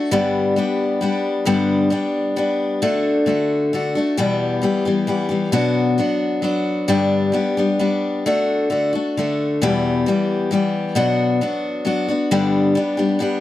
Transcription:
Already playing: A3 D4 F#4
0.11 G2 D3 G3 B3 D4 G4
0.56 G3 B3 D4 G4
1.01 G3 B3 D4 G4
1.45 G2 D3 G3 B3 D4 G4
1.90 G3 B3 D4 G4
2.36 G3 B3 D4 G4
2.82 D3 A3 D4 F#4
3.26 D3 A3 D4 F#4
3.73 D3 A3 D4 F#4
3.95 A3 D4 F#4
4.17 E2 B2 E3 G3 B3 G4
4.62 E3 G3 B3 G4
4.85 E3 G3 B3 G4
5.07 E3 G3 B3 G4
5.29 E3 G3 B3 G4
5.52 B2 F#3 B3 D4 F#4
5.98 F#3 B3 D4 F#4
6.42 F#3 B3 D4 F#4
6.88 G2 D3 G3 B3 D4 G4
7.32 G3 B3 D4 G4
7.57 G3 B3 D4 G4
7.79 G3 B3 D4 G4
8.26 D3 A3 D4 F#4
8.70 D3 A3 D4 F#4
8.93 A3 D4 F#4
9.17 D3 A3 D4 F#4
9.62 E2 B2 E3 G3 B3 G4
10.06 E3 G3 B3 G4
10.51 E3 G3 B3 G4
10.95 B2 F#3 B3 D4 F#4
11.41 F#3 B3 D4 F#4
11.85 F#3 B3 D4 F#4
12.08 B3 D4 F#4
12.31 G2 D3 G3 B3 D4 G4
12.75 G3 B3 D4 G4
12.97 G3 B3 D4 G4
13.19 G3 B3 D4 G4

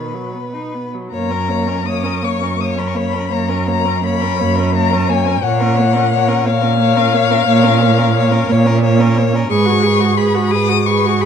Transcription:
Already playing: B2 D#3 B4
0.14 F#3
0.33 B3
0.54 D#4
0.74 B3
0.94 F#3
1.12 F#2 A#3 C#5 A#5
1.30 C#4 A#4
1.48 A#3 C#5
1.67 C#4 A#4
1.85 A#3 C#5 D#6
2.04 C#4 A#4
2.22 F#2 A#3 C#5 C#6
2.42 C#4 A#4
2.58 A#3 C#5 D#6
2.70 C#6
2.76 C#4 A#4 B5
2.87 C#6
2.94 A#3 C#5 B5
3.12 C#4 A#4
3.31 F#2 A#3 C#5 A#5
3.49 C#4 A#4
3.67 A#3 C#5 A#5
3.85 C#4 A#4
4.04 A#3 C#5 B5
4.21 C#4 A#4
4.39 F#2 A#3 C#5
4.55 C#4 A#4
4.75 A#3 C#5 A#5
4.91 C#4 A#4
5.07 A#3 C#5 G#5
5.26 C#4 A#4
5.42 A#2 A#3 C#5 F#5
5.60 C#4 A#4
5.77 A#3 C#5
5.94 C#4 A#4
6.11 A#3 C#5
6.28 C#4 A#4
6.45 A#2 A#3 C#5 F5
6.61 C#4 A#4
6.78 A#3 C#5
6.96 C#4 A#4
7.13 A#3 C#5
7.31 C#4 A#4
7.46 A#2 A#3 C#5
7.63 C#4 A#4
7.81 A#3 C#5
7.97 C#4 A#4
8.14 A#3 C#5
8.31 C#4 A#4
8.48 A#2 A#3 C#5
8.65 C#4 A#4
8.83 A#3 C#5
8.99 C#4 A#4
9.16 A#3 C#5
9.33 C#4 A#4
9.50 G#2 G#4 B4 C#6
9.66 F#4 G#4
9.82 G#4 B4
10.00 F#4
10.05 G#4
10.17 G#4 B4 B5
10.35 F#4 G#4
10.51 G#2 G#4 B4 D#6
10.69 F#4 G#4
10.86 G#4 B4 C#6
11.05 F#4 G#4
11.21 G#4 B5

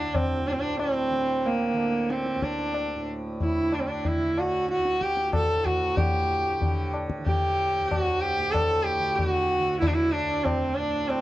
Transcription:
Already playing: D2 A2 D3 D4
0.15 C4, tabla na, tabla ge
0.47 A2 D4, tabla te
0.52 C4
0.60 D4
0.79 C4, tabla na
1.10 D3
1.45 A#3, tabla tin
1.73 D3
1.77 tabla na
2.10 C4, tabla te
2.26 tabla te
2.35 D2
2.42 D4, tabla ke
2.59 tabla te
2.74 tabla na
2.95 A2
3.41 E4, tabla tin, tabla ge
3.56 D3
3.72 D4, tabla na
3.80 C4
3.87 D4
4.05 E4, tabla tin, tabla ge
4.16 D3
4.38 F#4, tabla na
4.69 F#4, tabla te
4.77 D2
4.85 tabla te
5.01 G4, tabla ke
5.17 tabla te
5.33 A4, tabla na, tabla ge
5.39 A2
5.65 F#4, tabla ge
5.96 G4, tabla tin, tabla ge
6.01 A2
6.60 D3, tabla tin, tabla ge
6.94 tabla na
7.10 tabla ke
7.19 D3
7.26 G4, tabla tin, tabla ge
7.80 D2
7.89 F#4, tabla na, tabla ge
8.21 G4
8.39 A2
8.51 A4, tabla na, tabla ge
8.83 G4
8.98 D3
9.16 G4, tabla tin, tabla ge
9.27 F#4
9.58 D3
9.80 E4, tabla tin, tabla ge
9.88 D4
9.94 E4
10.12 D4, tabla na
10.19 D2
10.44 C4, tabla na, tabla ge
10.76 D4
10.80 A2
11.08 C4, tabla na

